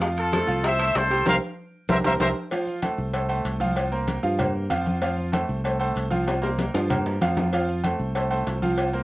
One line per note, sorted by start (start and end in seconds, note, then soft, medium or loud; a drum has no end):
0.00 0.43 F2 medium
0.00 0.27 F3 medium
0.00 0.27 F4 loud
0.00 0.27 F5 medium
0.00 high bongo medium
0.00 high timbale medium
0.00 maracas medium
0.16 0.62 F4 medium
0.16 0.62 A4 medium
0.16 high conga soft
0.16 high timbale medium
0.16 maracas medium
0.32 0.45 A3 medium
0.32 0.46 A4 medium
0.32 0.46 C5 medium
0.32 high bongo medium
0.32 high conga loud
0.32 high timbale loud
0.32 maracas medium
0.47 0.92 C2 loud
0.47 0.73 F3 medium
0.47 0.74 F4 medium
0.47 0.74 F5 medium
0.47 high conga soft
0.47 maracas soft
0.63 0.95 C5 medium
0.63 0.96 E5 loud
0.63 high bongo medium
0.63 high conga soft
0.63 high timbale medium
0.63 maracas medium
0.79 1.05 A3 medium
0.79 1.05 A4 medium
0.79 1.05 C5 medium
0.79 high conga soft
0.79 high timbale loud
0.95 1.24 C2 loud
0.95 1.28 A4 medium
0.95 1.27 C5 loud
0.95 high bongo medium
0.95 low bongo medium
0.95 high conga soft
0.95 high timbale medium
0.95 maracas medium
1.10 1.24 G3 medium
1.10 1.24 G4 medium
1.10 1.24 G5 loud
1.10 maracas soft
1.26 1.38 C2 medium
1.26 1.36 G4 loud
1.26 1.36 A#4 loud
1.26 1.35 A#4 medium
1.26 1.36 C5 loud
1.26 1.35 C5 loud
1.26 1.35 F5 loud
1.26 low bongo loud
1.26 high conga medium
1.26 high timbale medium
1.26 maracas loud
1.89 2.01 C2 loud
1.89 1.99 G4 medium
1.89 1.99 A#4 loud
1.89 1.97 A#4 medium
1.89 1.99 C5 loud
1.89 1.98 C5 medium
1.89 1.98 E5 medium
1.89 low bongo loud
1.89 high conga loud
1.89 high timbale loud
1.89 maracas loud
2.04 2.16 C2 medium
2.04 2.15 G4 loud
2.04 2.14 A#4 loud
2.04 2.13 A#4 medium
2.04 2.15 C5 loud
2.04 2.13 C5 loud
2.04 2.13 E5 medium
2.04 low bongo medium
2.04 high conga loud
2.04 high timbale loud
2.04 maracas loud
2.20 2.32 C2 loud
2.20 2.30 G4 loud
2.20 2.30 A#4 loud
2.20 2.28 A#4 loud
2.20 2.30 C5 loud
2.20 2.28 C5 loud
2.20 2.28 E5 medium
2.20 low bongo loud
2.20 high conga medium
2.20 high timbale loud
2.20 maracas loud
2.51 2.78 F3 medium
2.51 2.78 F4 medium
2.51 2.78 F5 loud
2.51 cowbell loud
2.51 high conga soft
2.51 low agogo medium
2.51 maracas medium
2.67 high conga soft
2.67 maracas medium
2.82 3.08 A3 medium
2.82 3.09 A4 medium
2.82 3.09 C5 medium
2.82 cowbell medium
2.82 high conga loud
2.82 low agogo loud
2.82 maracas medium
2.98 3.42 C2 medium
2.98 high conga soft
2.98 maracas soft
3.13 3.27 A3 medium
3.13 3.27 A4 medium
3.13 3.27 C5 medium
3.13 cowbell loud
3.13 high conga soft
3.13 low agogo medium
3.13 maracas medium
3.29 3.55 A3 medium
3.29 3.55 A4 medium
3.29 3.55 C5 medium
3.29 high conga soft
3.29 low agogo loud
3.29 maracas medium
3.45 4.18 C2 loud
3.45 cowbell medium
3.45 high conga soft
3.45 maracas medium
3.60 3.86 F3 loud
3.60 3.87 F4 medium
3.60 3.87 F5 medium
3.60 high conga medium
3.60 low agogo medium
3.60 maracas soft
3.76 cowbell loud
3.76 high conga soft
3.76 low agogo loud
3.76 maracas medium
3.92 4.18 A#3 medium
3.92 4.18 A#4 medium
3.92 4.18 C5 medium
3.92 high conga soft
4.07 cowbell medium
4.07 high conga medium
4.07 low agogo medium
4.07 maracas medium
4.23 4.67 G2 loud
4.23 4.36 F3 medium
4.23 4.36 F4 medium
4.23 4.36 F5 medium
4.23 high conga soft
4.23 maracas soft
4.39 4.65 A#3 medium
4.39 4.65 A#4 medium
4.39 4.65 C5 medium
4.39 cowbell loud
4.39 high conga soft
4.39 low conga medium
4.39 low agogo loud
4.39 maracas medium
4.55 high conga soft
4.70 5.43 F2 medium
4.70 4.96 F3 medium
4.70 4.96 F4 loud
4.70 4.96 F5 medium
4.70 cowbell medium
4.70 high conga medium
4.70 low agogo loud
4.70 maracas medium
4.86 high conga medium
4.86 low agogo medium
4.86 maracas soft
5.01 5.28 F3 loud
5.01 5.28 F4 medium
5.01 5.28 F5 loud
5.01 cowbell loud
5.01 low agogo medium
5.01 maracas medium
5.18 high conga soft
5.32 5.58 A3 medium
5.32 5.59 A4 medium
5.32 5.59 C5 medium
5.32 cowbell medium
5.32 high conga loud
5.32 low agogo loud
5.32 maracas medium
5.49 5.93 C2 loud
5.49 high conga soft
5.49 maracas soft
5.64 5.77 A3 medium
5.64 5.77 A4 medium
5.64 5.78 C5 medium
5.64 cowbell loud
5.64 high conga soft
5.64 low agogo medium
5.64 maracas medium
5.80 6.06 A3 medium
5.80 6.06 A4 medium
5.80 6.06 C5 medium
5.80 high conga soft
5.80 low agogo loud
5.80 maracas medium
5.96 6.69 C2 medium
5.96 cowbell medium
5.96 high conga soft
5.96 maracas medium
6.11 6.37 F3 medium
6.11 6.37 F4 medium
6.11 6.37 F5 medium
6.11 high conga medium
6.11 low agogo medium
6.11 maracas soft
6.28 cowbell loud
6.28 high bongo medium
6.28 high conga soft
6.28 low agogo medium
6.28 maracas medium
6.42 6.68 A#3 medium
6.42 6.69 A#4 medium
6.42 6.69 C5 medium
6.42 high bongo medium
6.42 high conga soft
6.59 cowbell medium
6.59 high bongo medium
6.59 high conga medium
6.59 low agogo medium
6.59 maracas medium
6.74 7.18 G2 medium
6.74 6.87 F3 medium
6.74 6.87 F4 medium
6.74 6.88 F5 medium
6.74 low bongo medium
6.74 high conga soft
6.74 high timbale medium
6.74 maracas soft
6.90 7.16 A#3 medium
6.90 7.16 A#4 medium
6.90 7.16 C5 medium
6.90 cowbell loud
6.90 low bongo medium
6.90 high conga soft
6.90 low conga medium
6.90 low agogo loud
6.90 maracas medium
7.06 high conga soft
7.06 low timbale medium
7.21 7.94 F2 medium
7.21 7.47 F3 medium
7.21 7.47 F4 medium
7.21 7.47 F5 medium
7.21 cowbell medium
7.21 high conga medium
7.21 low timbale medium
7.21 low agogo loud
7.21 maracas medium
7.37 low bongo loud
7.37 high conga medium
7.37 low timbale medium
7.37 low agogo medium
7.37 maracas soft
7.53 7.79 F3 medium
7.53 7.79 F4 loud
7.53 7.79 F5 medium
7.53 cowbell loud
7.53 low agogo medium
7.53 maracas medium
7.68 high conga soft
7.68 maracas medium
7.83 8.09 A3 medium
7.83 8.10 A4 medium
7.83 8.10 C5 medium
7.83 cowbell medium
7.83 high conga medium
7.83 low agogo loud
7.83 maracas medium
8.00 8.43 C2 medium
8.00 high conga soft
8.00 maracas soft
8.15 8.28 A3 medium
8.15 8.29 A4 medium
8.15 8.29 C5 medium
8.15 cowbell loud
8.15 high conga soft
8.15 low agogo medium
8.15 maracas medium
8.31 8.57 A3 medium
8.31 8.57 A4 medium
8.31 8.57 C5 medium
8.31 high conga soft
8.31 low agogo loud
8.31 maracas medium
8.47 9.03 C2 medium
8.47 cowbell medium
8.47 high conga soft
8.47 low timbale medium
8.47 maracas medium
8.62 8.88 F3 loud
8.62 8.88 F4 medium
8.62 8.88 F5 medium
8.62 high conga medium
8.62 low agogo medium
8.62 maracas soft
8.78 cowbell loud
8.78 high conga soft
8.78 low agogo loud
8.78 maracas medium
8.93 9.03 A#3 medium
8.93 9.03 A#4 medium
8.93 9.03 C5 medium
8.93 high conga soft
8.93 maracas medium